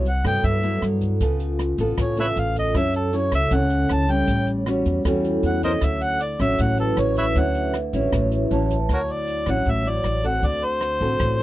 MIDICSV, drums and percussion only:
0, 0, Header, 1, 2, 480
1, 0, Start_track
1, 0, Key_signature, 2, "major"
1, 0, Tempo, 384369
1, 1507, Time_signature, 4, 2, 24, 8
1, 14271, End_track
2, 0, Start_track
2, 0, Title_t, "Drums"
2, 71, Note_on_c, 9, 42, 41
2, 71, Note_on_c, 9, 82, 58
2, 196, Note_off_c, 9, 42, 0
2, 196, Note_off_c, 9, 82, 0
2, 306, Note_on_c, 9, 36, 20
2, 307, Note_on_c, 9, 37, 58
2, 307, Note_on_c, 9, 42, 37
2, 312, Note_on_c, 9, 82, 27
2, 431, Note_off_c, 9, 36, 0
2, 432, Note_off_c, 9, 37, 0
2, 432, Note_off_c, 9, 42, 0
2, 437, Note_off_c, 9, 82, 0
2, 545, Note_on_c, 9, 36, 56
2, 547, Note_on_c, 9, 42, 50
2, 550, Note_on_c, 9, 82, 55
2, 670, Note_off_c, 9, 36, 0
2, 672, Note_off_c, 9, 42, 0
2, 675, Note_off_c, 9, 82, 0
2, 785, Note_on_c, 9, 42, 41
2, 790, Note_on_c, 9, 82, 28
2, 910, Note_off_c, 9, 42, 0
2, 915, Note_off_c, 9, 82, 0
2, 1025, Note_on_c, 9, 37, 53
2, 1025, Note_on_c, 9, 42, 41
2, 1033, Note_on_c, 9, 82, 50
2, 1150, Note_off_c, 9, 37, 0
2, 1150, Note_off_c, 9, 42, 0
2, 1158, Note_off_c, 9, 82, 0
2, 1264, Note_on_c, 9, 42, 40
2, 1265, Note_on_c, 9, 36, 20
2, 1281, Note_on_c, 9, 82, 27
2, 1389, Note_off_c, 9, 42, 0
2, 1390, Note_off_c, 9, 36, 0
2, 1406, Note_off_c, 9, 82, 0
2, 1505, Note_on_c, 9, 36, 60
2, 1505, Note_on_c, 9, 42, 56
2, 1512, Note_on_c, 9, 82, 61
2, 1630, Note_off_c, 9, 36, 0
2, 1630, Note_off_c, 9, 42, 0
2, 1637, Note_off_c, 9, 82, 0
2, 1746, Note_on_c, 9, 42, 43
2, 1752, Note_on_c, 9, 82, 24
2, 1871, Note_off_c, 9, 42, 0
2, 1877, Note_off_c, 9, 82, 0
2, 1988, Note_on_c, 9, 37, 55
2, 1988, Note_on_c, 9, 42, 43
2, 1994, Note_on_c, 9, 82, 58
2, 2112, Note_off_c, 9, 37, 0
2, 2112, Note_off_c, 9, 42, 0
2, 2119, Note_off_c, 9, 82, 0
2, 2225, Note_on_c, 9, 42, 46
2, 2228, Note_on_c, 9, 36, 23
2, 2232, Note_on_c, 9, 82, 26
2, 2350, Note_off_c, 9, 42, 0
2, 2353, Note_off_c, 9, 36, 0
2, 2357, Note_off_c, 9, 82, 0
2, 2469, Note_on_c, 9, 36, 56
2, 2469, Note_on_c, 9, 37, 59
2, 2469, Note_on_c, 9, 42, 56
2, 2473, Note_on_c, 9, 82, 65
2, 2594, Note_off_c, 9, 36, 0
2, 2594, Note_off_c, 9, 37, 0
2, 2594, Note_off_c, 9, 42, 0
2, 2598, Note_off_c, 9, 82, 0
2, 2708, Note_on_c, 9, 42, 41
2, 2712, Note_on_c, 9, 82, 24
2, 2833, Note_off_c, 9, 42, 0
2, 2836, Note_off_c, 9, 82, 0
2, 2951, Note_on_c, 9, 42, 44
2, 2954, Note_on_c, 9, 82, 58
2, 3075, Note_off_c, 9, 42, 0
2, 3079, Note_off_c, 9, 82, 0
2, 3189, Note_on_c, 9, 36, 21
2, 3193, Note_on_c, 9, 82, 27
2, 3194, Note_on_c, 9, 42, 38
2, 3314, Note_off_c, 9, 36, 0
2, 3318, Note_off_c, 9, 42, 0
2, 3318, Note_off_c, 9, 82, 0
2, 3429, Note_on_c, 9, 36, 62
2, 3429, Note_on_c, 9, 82, 58
2, 3430, Note_on_c, 9, 37, 56
2, 3430, Note_on_c, 9, 42, 52
2, 3554, Note_off_c, 9, 36, 0
2, 3554, Note_off_c, 9, 37, 0
2, 3554, Note_off_c, 9, 42, 0
2, 3554, Note_off_c, 9, 82, 0
2, 3670, Note_on_c, 9, 82, 26
2, 3671, Note_on_c, 9, 42, 39
2, 3795, Note_off_c, 9, 82, 0
2, 3796, Note_off_c, 9, 42, 0
2, 3908, Note_on_c, 9, 42, 39
2, 3911, Note_on_c, 9, 82, 66
2, 4033, Note_off_c, 9, 42, 0
2, 4035, Note_off_c, 9, 82, 0
2, 4144, Note_on_c, 9, 37, 57
2, 4144, Note_on_c, 9, 42, 38
2, 4145, Note_on_c, 9, 36, 21
2, 4154, Note_on_c, 9, 82, 25
2, 4269, Note_off_c, 9, 37, 0
2, 4269, Note_off_c, 9, 42, 0
2, 4270, Note_off_c, 9, 36, 0
2, 4278, Note_off_c, 9, 82, 0
2, 4382, Note_on_c, 9, 42, 60
2, 4384, Note_on_c, 9, 36, 56
2, 4387, Note_on_c, 9, 82, 58
2, 4507, Note_off_c, 9, 42, 0
2, 4509, Note_off_c, 9, 36, 0
2, 4512, Note_off_c, 9, 82, 0
2, 4621, Note_on_c, 9, 42, 44
2, 4630, Note_on_c, 9, 82, 27
2, 4746, Note_off_c, 9, 42, 0
2, 4755, Note_off_c, 9, 82, 0
2, 4861, Note_on_c, 9, 37, 62
2, 4861, Note_on_c, 9, 42, 41
2, 4868, Note_on_c, 9, 82, 58
2, 4986, Note_off_c, 9, 37, 0
2, 4986, Note_off_c, 9, 42, 0
2, 4992, Note_off_c, 9, 82, 0
2, 5100, Note_on_c, 9, 42, 40
2, 5102, Note_on_c, 9, 36, 21
2, 5109, Note_on_c, 9, 82, 27
2, 5224, Note_off_c, 9, 42, 0
2, 5227, Note_off_c, 9, 36, 0
2, 5234, Note_off_c, 9, 82, 0
2, 5336, Note_on_c, 9, 42, 56
2, 5341, Note_on_c, 9, 36, 51
2, 5344, Note_on_c, 9, 82, 66
2, 5461, Note_off_c, 9, 42, 0
2, 5466, Note_off_c, 9, 36, 0
2, 5469, Note_off_c, 9, 82, 0
2, 5579, Note_on_c, 9, 42, 39
2, 5593, Note_on_c, 9, 82, 25
2, 5704, Note_off_c, 9, 42, 0
2, 5717, Note_off_c, 9, 82, 0
2, 5823, Note_on_c, 9, 37, 58
2, 5823, Note_on_c, 9, 42, 46
2, 5832, Note_on_c, 9, 82, 64
2, 5948, Note_off_c, 9, 37, 0
2, 5948, Note_off_c, 9, 42, 0
2, 5957, Note_off_c, 9, 82, 0
2, 6064, Note_on_c, 9, 36, 21
2, 6066, Note_on_c, 9, 42, 41
2, 6073, Note_on_c, 9, 82, 26
2, 6189, Note_off_c, 9, 36, 0
2, 6190, Note_off_c, 9, 42, 0
2, 6198, Note_off_c, 9, 82, 0
2, 6301, Note_on_c, 9, 82, 61
2, 6306, Note_on_c, 9, 36, 52
2, 6309, Note_on_c, 9, 37, 59
2, 6309, Note_on_c, 9, 42, 60
2, 6426, Note_off_c, 9, 82, 0
2, 6431, Note_off_c, 9, 36, 0
2, 6434, Note_off_c, 9, 37, 0
2, 6434, Note_off_c, 9, 42, 0
2, 6548, Note_on_c, 9, 82, 28
2, 6550, Note_on_c, 9, 42, 46
2, 6673, Note_off_c, 9, 82, 0
2, 6675, Note_off_c, 9, 42, 0
2, 6786, Note_on_c, 9, 82, 55
2, 6787, Note_on_c, 9, 42, 47
2, 6911, Note_off_c, 9, 82, 0
2, 6912, Note_off_c, 9, 42, 0
2, 7024, Note_on_c, 9, 82, 28
2, 7025, Note_on_c, 9, 36, 23
2, 7030, Note_on_c, 9, 42, 43
2, 7148, Note_off_c, 9, 82, 0
2, 7150, Note_off_c, 9, 36, 0
2, 7154, Note_off_c, 9, 42, 0
2, 7258, Note_on_c, 9, 82, 55
2, 7260, Note_on_c, 9, 37, 51
2, 7260, Note_on_c, 9, 42, 61
2, 7264, Note_on_c, 9, 36, 58
2, 7383, Note_off_c, 9, 82, 0
2, 7385, Note_off_c, 9, 37, 0
2, 7385, Note_off_c, 9, 42, 0
2, 7389, Note_off_c, 9, 36, 0
2, 7502, Note_on_c, 9, 82, 26
2, 7504, Note_on_c, 9, 42, 43
2, 7627, Note_off_c, 9, 82, 0
2, 7629, Note_off_c, 9, 42, 0
2, 7738, Note_on_c, 9, 82, 65
2, 7745, Note_on_c, 9, 42, 40
2, 7863, Note_off_c, 9, 82, 0
2, 7870, Note_off_c, 9, 42, 0
2, 7984, Note_on_c, 9, 82, 28
2, 7987, Note_on_c, 9, 36, 23
2, 7988, Note_on_c, 9, 37, 49
2, 7988, Note_on_c, 9, 42, 38
2, 8109, Note_off_c, 9, 82, 0
2, 8112, Note_off_c, 9, 36, 0
2, 8113, Note_off_c, 9, 37, 0
2, 8113, Note_off_c, 9, 42, 0
2, 8225, Note_on_c, 9, 42, 61
2, 8225, Note_on_c, 9, 82, 61
2, 8226, Note_on_c, 9, 36, 57
2, 8350, Note_off_c, 9, 42, 0
2, 8350, Note_off_c, 9, 82, 0
2, 8351, Note_off_c, 9, 36, 0
2, 8461, Note_on_c, 9, 42, 40
2, 8468, Note_on_c, 9, 82, 28
2, 8586, Note_off_c, 9, 42, 0
2, 8593, Note_off_c, 9, 82, 0
2, 8703, Note_on_c, 9, 37, 59
2, 8703, Note_on_c, 9, 42, 41
2, 8706, Note_on_c, 9, 82, 55
2, 8828, Note_off_c, 9, 37, 0
2, 8828, Note_off_c, 9, 42, 0
2, 8831, Note_off_c, 9, 82, 0
2, 8945, Note_on_c, 9, 36, 22
2, 8945, Note_on_c, 9, 42, 39
2, 8948, Note_on_c, 9, 82, 25
2, 9070, Note_off_c, 9, 36, 0
2, 9070, Note_off_c, 9, 42, 0
2, 9073, Note_off_c, 9, 82, 0
2, 9184, Note_on_c, 9, 42, 51
2, 9185, Note_on_c, 9, 36, 51
2, 9186, Note_on_c, 9, 82, 66
2, 9308, Note_off_c, 9, 42, 0
2, 9310, Note_off_c, 9, 36, 0
2, 9311, Note_off_c, 9, 82, 0
2, 9422, Note_on_c, 9, 42, 44
2, 9427, Note_on_c, 9, 82, 25
2, 9547, Note_off_c, 9, 42, 0
2, 9552, Note_off_c, 9, 82, 0
2, 9661, Note_on_c, 9, 37, 52
2, 9661, Note_on_c, 9, 42, 41
2, 9665, Note_on_c, 9, 82, 62
2, 9785, Note_off_c, 9, 37, 0
2, 9785, Note_off_c, 9, 42, 0
2, 9790, Note_off_c, 9, 82, 0
2, 9905, Note_on_c, 9, 36, 21
2, 9907, Note_on_c, 9, 42, 44
2, 9911, Note_on_c, 9, 82, 25
2, 10030, Note_off_c, 9, 36, 0
2, 10032, Note_off_c, 9, 42, 0
2, 10035, Note_off_c, 9, 82, 0
2, 10145, Note_on_c, 9, 36, 60
2, 10146, Note_on_c, 9, 37, 58
2, 10146, Note_on_c, 9, 42, 53
2, 10152, Note_on_c, 9, 82, 58
2, 10270, Note_off_c, 9, 36, 0
2, 10271, Note_off_c, 9, 37, 0
2, 10271, Note_off_c, 9, 42, 0
2, 10277, Note_off_c, 9, 82, 0
2, 10384, Note_on_c, 9, 42, 45
2, 10391, Note_on_c, 9, 82, 28
2, 10509, Note_off_c, 9, 42, 0
2, 10516, Note_off_c, 9, 82, 0
2, 10626, Note_on_c, 9, 42, 41
2, 10629, Note_on_c, 9, 82, 57
2, 10751, Note_off_c, 9, 42, 0
2, 10754, Note_off_c, 9, 82, 0
2, 10865, Note_on_c, 9, 36, 24
2, 10870, Note_on_c, 9, 42, 48
2, 10879, Note_on_c, 9, 82, 27
2, 10990, Note_off_c, 9, 36, 0
2, 10995, Note_off_c, 9, 42, 0
2, 11004, Note_off_c, 9, 82, 0
2, 11103, Note_on_c, 9, 37, 55
2, 11103, Note_on_c, 9, 42, 35
2, 11104, Note_on_c, 9, 36, 56
2, 11228, Note_off_c, 9, 37, 0
2, 11228, Note_off_c, 9, 42, 0
2, 11229, Note_off_c, 9, 36, 0
2, 11341, Note_on_c, 9, 42, 25
2, 11465, Note_off_c, 9, 42, 0
2, 11581, Note_on_c, 9, 42, 38
2, 11706, Note_off_c, 9, 42, 0
2, 11816, Note_on_c, 9, 37, 51
2, 11816, Note_on_c, 9, 42, 26
2, 11821, Note_on_c, 9, 36, 23
2, 11941, Note_off_c, 9, 37, 0
2, 11941, Note_off_c, 9, 42, 0
2, 11946, Note_off_c, 9, 36, 0
2, 12052, Note_on_c, 9, 42, 39
2, 12060, Note_on_c, 9, 36, 59
2, 12177, Note_off_c, 9, 42, 0
2, 12185, Note_off_c, 9, 36, 0
2, 12294, Note_on_c, 9, 42, 23
2, 12419, Note_off_c, 9, 42, 0
2, 12537, Note_on_c, 9, 37, 54
2, 12537, Note_on_c, 9, 42, 38
2, 12662, Note_off_c, 9, 37, 0
2, 12662, Note_off_c, 9, 42, 0
2, 12780, Note_on_c, 9, 36, 23
2, 12780, Note_on_c, 9, 42, 27
2, 12905, Note_off_c, 9, 36, 0
2, 12905, Note_off_c, 9, 42, 0
2, 13019, Note_on_c, 9, 42, 39
2, 13021, Note_on_c, 9, 36, 58
2, 13144, Note_off_c, 9, 42, 0
2, 13146, Note_off_c, 9, 36, 0
2, 13261, Note_on_c, 9, 42, 27
2, 13386, Note_off_c, 9, 42, 0
2, 13498, Note_on_c, 9, 37, 56
2, 13498, Note_on_c, 9, 42, 45
2, 13623, Note_off_c, 9, 37, 0
2, 13623, Note_off_c, 9, 42, 0
2, 13743, Note_on_c, 9, 36, 21
2, 13743, Note_on_c, 9, 42, 24
2, 13868, Note_off_c, 9, 36, 0
2, 13868, Note_off_c, 9, 42, 0
2, 13983, Note_on_c, 9, 36, 60
2, 13984, Note_on_c, 9, 37, 60
2, 13984, Note_on_c, 9, 42, 48
2, 14108, Note_off_c, 9, 36, 0
2, 14109, Note_off_c, 9, 37, 0
2, 14109, Note_off_c, 9, 42, 0
2, 14223, Note_on_c, 9, 42, 27
2, 14271, Note_off_c, 9, 42, 0
2, 14271, End_track
0, 0, End_of_file